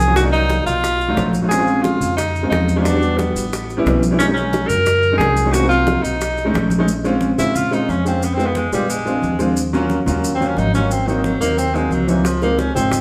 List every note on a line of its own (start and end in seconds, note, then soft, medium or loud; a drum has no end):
0.00 0.61 C2 medium
0.00 0.14 G#4 loud
0.00 maracas medium
0.07 0.14 F#3 medium
0.07 0.14 A#3 medium
0.07 0.14 C#4 medium
0.07 0.14 F4 medium
0.16 0.22 F#3 medium
0.16 0.22 A#3 medium
0.16 0.23 D4 medium
0.16 0.23 D#4 medium
0.16 0.24 F#4 medium
0.16 high bongo medium
0.16 maracas medium
0.23 0.71 F#3 medium
0.23 0.72 A#3 medium
0.23 0.72 D#4 medium
0.23 0.72 D5 medium
0.32 0.64 D#4 loud
0.32 high conga soft
0.32 maracas soft
0.49 high bongo medium
0.49 high conga loud
0.49 maracas soft
0.66 1.14 B1 medium
0.66 1.30 F4 loud
0.66 high bongo soft
0.66 high conga soft
0.66 maracas medium
0.83 high bongo medium
0.83 high conga soft
0.83 maracas medium
1.00 high bongo soft
1.00 high conga soft
1.00 maracas soft
1.08 1.32 F#3 medium
1.08 1.32 A3 medium
1.08 1.33 D#4 medium
1.08 1.33 F4 medium
1.17 1.95 A#1 medium
1.17 high bongo medium
1.17 low bongo medium
1.17 high conga medium
1.17 maracas soft
1.33 high bongo soft
1.33 high conga medium
1.33 maracas medium
1.42 1.48 F#3 medium
1.42 1.49 A3 medium
1.42 1.49 D#4 medium
1.42 1.49 F4 medium
1.48 1.57 G#3 medium
1.48 1.57 C4 medium
1.48 1.84 G#4 medium
1.48 high bongo medium
1.48 high conga soft
1.48 maracas medium
1.53 1.58 C#4 medium
1.53 1.58 F4 medium
1.59 2.06 G#3 medium
1.59 2.06 C4 medium
1.59 2.06 C#4 medium
1.59 2.07 F4 medium
1.67 high conga soft
1.67 maracas soft
1.82 2.16 F4 medium
1.82 high bongo medium
1.82 high conga medium
1.82 maracas soft
2.01 2.48 F2 medium
2.01 high conga soft
2.01 low conga medium
2.01 maracas medium
2.17 2.49 D#4 loud
2.17 high bongo medium
2.17 high conga soft
2.17 low conga medium
2.17 maracas medium
2.35 high conga soft
2.35 maracas soft
2.43 2.67 G#3 medium
2.43 2.67 C4 medium
2.43 2.67 C#4 medium
2.43 2.67 F4 medium
2.50 3.30 E2 medium
2.50 2.79 D#4 medium
2.50 high bongo medium
2.50 low bongo medium
2.50 high conga medium
2.50 maracas soft
2.69 high conga medium
2.69 maracas medium
2.76 2.82 G#3 medium
2.76 2.83 C4 medium
2.76 2.83 C#4 medium
2.76 2.84 C#4 medium
2.76 2.83 F4 medium
2.82 2.91 G3 medium
2.82 2.91 B3 medium
2.82 3.19 D4 medium
2.82 high bongo medium
2.82 high conga soft
2.82 maracas medium
2.86 2.92 D4 medium
2.86 2.92 F#4 medium
2.94 3.41 G3 medium
2.94 3.41 B3 medium
2.94 3.41 D4 medium
2.94 3.42 F#4 medium
3.02 high conga soft
3.02 maracas soft
3.18 3.85 B3 medium
3.18 high bongo medium
3.18 high conga loud
3.18 maracas soft
3.35 3.82 A1 medium
3.35 high bongo soft
3.35 high conga soft
3.35 maracas medium
3.53 high bongo medium
3.53 high conga soft
3.53 maracas medium
3.70 high bongo soft
3.70 high conga soft
3.70 maracas soft
3.77 4.01 G3 medium
3.77 4.01 B3 medium
3.77 4.01 C#4 medium
3.77 4.02 E4 loud
3.86 4.64 B1 medium
3.86 high bongo medium
3.86 low bongo medium
3.86 high conga medium
3.86 maracas soft
4.03 high bongo soft
4.03 high conga medium
4.03 maracas medium
4.11 4.17 G3 medium
4.11 4.17 B3 medium
4.11 4.18 C#4 medium
4.11 4.18 E4 medium
4.19 4.25 F#3 medium
4.19 4.25 G#3 medium
4.19 4.26 C#4 medium
4.19 4.25 C#4 medium
4.19 4.26 D#4 medium
4.19 high bongo medium
4.19 maracas medium
4.28 4.75 F#3 medium
4.28 4.75 G#3 medium
4.28 4.75 C#4 medium
4.28 4.76 D#4 medium
4.34 4.69 C#4 medium
4.34 high conga soft
4.34 maracas soft
4.53 high bongo medium
4.53 high conga medium
4.53 maracas soft
4.68 5.17 F#2 medium
4.68 5.17 A#4 loud
4.68 high conga soft
4.68 low conga medium
4.68 maracas medium
4.86 high bongo medium
4.86 high conga soft
4.86 low conga medium
4.86 maracas medium
5.03 high conga soft
5.03 maracas soft
5.12 5.35 F#3 medium
5.12 5.35 G#3 medium
5.12 5.36 C#4 medium
5.12 5.36 D#4 medium
5.18 5.98 C2 medium
5.18 5.54 G#4 loud
5.18 high bongo medium
5.18 low bongo medium
5.18 high conga medium
5.18 maracas soft
5.37 maracas medium
5.45 5.51 F#3 medium
5.45 5.52 G#3 medium
5.45 5.52 C#4 medium
5.45 5.52 D#4 medium
5.52 5.59 F#3 medium
5.52 5.60 A#3 medium
5.52 5.60 C4 medium
5.52 5.60 D#4 medium
5.52 5.68 F#4 loud
5.52 high bongo medium
5.52 maracas medium
5.62 6.09 F#3 medium
5.62 6.09 A#3 medium
5.62 6.10 C4 medium
5.62 6.10 D#4 medium
5.69 6.04 F4 medium
5.69 high conga soft
5.69 maracas soft
5.87 high bongo medium
5.87 high conga medium
5.87 maracas soft
6.02 6.51 B1 medium
6.02 6.70 D#4 medium
6.02 high bongo soft
6.02 high conga soft
6.02 maracas medium
6.20 high bongo medium
6.20 high conga soft
6.20 maracas medium
6.37 high bongo soft
6.37 high conga soft
6.37 maracas soft
6.45 6.69 G#3 medium
6.45 6.69 A3 medium
6.45 6.70 C#4 medium
6.45 6.70 D#4 loud
6.54 7.33 A#1 medium
6.54 high bongo medium
6.54 low bongo medium
6.54 high conga medium
6.54 maracas soft
6.70 high bongo soft
6.70 high conga medium
6.70 maracas medium
6.78 6.85 G#3 medium
6.78 6.85 A3 medium
6.78 6.86 C#4 medium
6.78 6.86 D#4 loud
6.88 high conga soft
6.88 maracas medium
7.04 7.28 G#3 medium
7.04 7.28 C4 medium
7.04 7.29 C#4 medium
7.04 7.29 F4 loud
7.04 high conga soft
7.04 maracas soft
7.21 high conga medium
7.21 maracas soft
7.38 7.85 A#2 medium
7.38 7.62 G#3 medium
7.38 7.62 C4 medium
7.38 7.62 C#4 medium
7.38 7.58 E4 medium
7.38 7.62 F4 medium
7.38 high conga soft
7.38 low conga medium
7.38 maracas medium
7.56 7.75 F4 medium
7.56 high conga soft
7.56 low conga medium
7.56 maracas medium
7.71 7.95 G#3 medium
7.71 7.96 C4 medium
7.71 7.95 C#4 medium
7.71 7.91 D#4 medium
7.71 7.96 F4 medium
7.71 high conga soft
7.71 maracas soft
7.89 8.67 F2 medium
7.89 8.06 C#4 medium
7.89 high conga medium
7.89 maracas soft
8.05 8.22 G#3 medium
8.05 8.22 C4 medium
8.05 8.26 C4 medium
8.05 8.23 C#4 medium
8.05 8.23 F4 medium
8.05 maracas medium
8.22 8.36 B3 medium
8.22 high conga soft
8.22 maracas medium
8.34 8.62 G#3 medium
8.34 8.62 B3 medium
8.34 8.48 C4 medium
8.38 8.62 D#4 medium
8.38 8.63 F4 medium
8.38 high conga soft
8.38 maracas soft
8.46 8.58 B3 medium
8.55 8.73 G#3 medium
8.55 high conga medium
8.55 maracas soft
8.72 9.19 A#1 medium
8.72 8.91 G3 medium
8.72 8.89 G#3 medium
8.72 8.90 B3 medium
8.72 8.90 D#4 medium
8.72 8.90 F4 medium
8.72 high conga soft
8.72 maracas medium
8.89 9.40 G#3 medium
8.89 high conga soft
8.89 maracas medium
9.05 9.29 G#3 medium
9.05 9.30 C4 medium
9.05 9.30 D4 medium
9.05 9.30 F4 medium
9.05 high conga soft
9.05 maracas soft
9.22 10.01 D#2 medium
9.22 high conga medium
9.22 maracas soft
9.39 9.56 G#3 medium
9.39 9.57 C4 medium
9.39 9.57 D4 medium
9.39 9.57 F4 medium
9.39 high conga medium
9.39 maracas medium
9.56 high conga soft
9.56 maracas medium
9.73 9.97 F#3 loud
9.73 9.97 A#3 medium
9.73 9.97 C#4 medium
9.73 9.98 F4 loud
9.73 high conga soft
9.73 maracas soft
9.90 high conga medium
9.90 maracas soft
10.06 10.54 D#2 medium
10.06 10.30 F#3 medium
10.06 10.30 A#3 medium
10.06 10.31 C#4 medium
10.06 10.31 F4 medium
10.06 high conga soft
10.06 low conga medium
10.06 maracas medium
10.23 high conga soft
10.23 maracas medium
10.35 10.49 C4 medium
10.39 10.64 F#3 medium
10.39 10.64 A#3 medium
10.39 10.64 C#4 medium
10.39 10.65 F4 medium
10.39 high conga soft
10.39 maracas soft
10.48 10.59 C#4 medium
10.57 11.35 G#1 medium
10.57 10.74 D#4 loud
10.57 high conga medium
10.57 maracas soft
10.74 10.91 F#3 medium
10.74 10.91 A#3 medium
10.74 10.92 C#4 medium
10.74 10.91 C#4 medium
10.74 10.91 F4 medium
10.74 maracas medium
10.91 11.09 C4 medium
10.91 high conga soft
10.91 maracas medium
11.07 11.25 D#3 medium
11.07 11.31 F#3 medium
11.07 11.31 A#3 medium
11.07 11.31 C4 medium
11.07 11.32 D#4 medium
11.07 high conga soft
11.07 maracas soft
11.23 11.40 F#3 medium
11.23 high conga loud
11.23 maracas soft
11.40 11.88 D#2 medium
11.40 11.64 F#3 medium
11.40 11.60 A#3 medium
11.40 11.65 A#3 medium
11.40 11.65 C4 medium
11.40 11.65 D#4 medium
11.40 high conga soft
11.40 maracas medium
11.58 11.77 C4 medium
11.58 high conga soft
11.58 maracas medium
11.74 11.98 F#3 medium
11.74 11.94 G#3 medium
11.74 11.98 A#3 medium
11.74 11.98 C4 medium
11.74 11.99 D#4 medium
11.74 high conga soft
11.74 maracas soft
11.91 12.69 C#2 medium
11.91 12.10 F#3 medium
11.91 high conga medium
11.91 maracas soft
12.07 12.27 E3 medium
12.07 12.25 F#3 medium
12.07 12.25 A#3 medium
12.07 12.25 C4 medium
12.07 12.26 D#4 medium
12.07 high conga medium
12.07 maracas medium
12.25 12.41 F3 medium
12.25 high bongo medium
12.25 high conga soft
12.25 maracas medium
12.41 12.65 F3 medium
12.41 12.65 G#3 medium
12.41 12.60 A#3 medium
12.41 12.66 C4 medium
12.41 12.66 D#4 medium
12.41 high bongo soft
12.41 high conga soft
12.41 maracas soft
12.58 12.74 C#4 medium
12.58 high bongo medium
12.58 high conga medium
12.58 maracas soft
12.74 13.01 G#1 medium
12.74 12.98 F3 medium
12.74 12.99 G#3 medium
12.74 13.01 C4 medium
12.74 12.99 C4 medium
12.74 12.99 D#4 medium
12.74 high conga soft
12.74 low conga medium
12.74 maracas medium
12.92 high bongo medium
12.92 high conga soft
12.92 low conga medium
12.92 maracas medium